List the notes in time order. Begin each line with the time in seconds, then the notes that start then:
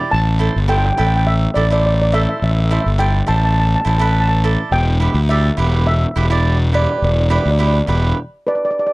Already playing: E4 G4 D5
0.11 A1 A5
0.39 E4 A4 C5
0.56 G1
0.68 E4 A4 C5 G5
0.77 G5
0.85 G5
0.92 G5
0.98 A1 E4 A4 B4 G5
1.07 G5
1.16 G5
1.27 E5
1.54 A1 E4 A4 D5
1.70 E4 A4 C5 D5
1.80 D5
1.86 D5
1.94 D5
2.02 D5
2.12 E4 A4 C5 E5
2.22 E5
2.29 E5
2.37 E5
2.42 A1 E5
2.51 E5
2.59 E5
2.64 E5
2.71 E4 A4 C5 E5
2.81 E5
2.86 G1
2.98 E4 A4 C5 G5
3.27 A1 E4 A4 C5 A5
3.36 A5
3.45 A5
3.53 A5
3.60 A5
3.67 A5
3.75 A5
3.81 E4 A5
3.86 A1 A4 C5 A5
3.98 E4 A4 B4 A5
4.05 A5
4.13 A5
4.20 A5
4.29 A5
4.44 E4 A4 D5
4.71 E1 G5
5.00 E4 G4 B4
5.14 D2
5.29 E4 G4 D5 E5
5.57 E1 E4 G4 B4
5.87 E5
6.16 E1 E4 G4 B4
6.30 E4 G4 D5
6.73 E4 G4 B4 D5
6.82 D5
6.91 D5
6.98 E1 D5
7.05 D5
7.13 D5
7.20 D5
7.28 E4 G4 B4 D5
7.35 D5
7.44 D2 D5
7.51 D5
7.59 E4 G4 B4
7.68 D5
7.73 D5
7.87 E1 E4 G4 B4
8.47 B4 D5
8.55 D5
8.65 D5
8.71 D5
8.79 D5
8.87 D5